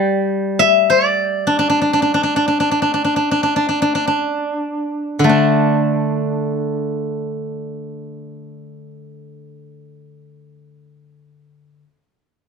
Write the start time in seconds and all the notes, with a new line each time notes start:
Already playing: G3 D5 E5 G5 A5
0.59 E5
0.90 D5
1.47 D4
1.59 D4
1.70 D4
1.81 D4
1.93 D4
2.02 D4
2.14 D4
2.23 D4
2.36 D4
2.48 D4
2.60 D4
2.71 D4
2.82 D4
2.94 D4
3.04 D4
3.16 D4
3.31 D4
3.43 D4
3.56 D4
3.69 D4
3.82 D4
3.95 D4
4.07 D4
5.19 D3
5.24 A3
5.29 D4